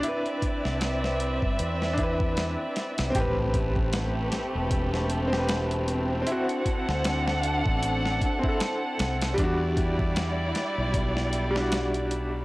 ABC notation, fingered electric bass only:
X:1
M:4/4
L:1/16
Q:"Swing 16ths" 1/4=77
K:C
V:1 name="Fingered electric bass" clef=bass
z3 C,,4 G,,, E,,4- E,, z2 C,, | [K:Ador] A,,,6 z E,,,8- E,,, | z3 D,,4 A,,,3 z4 C,,2 | E,,6 z B,,,8- B,,, |]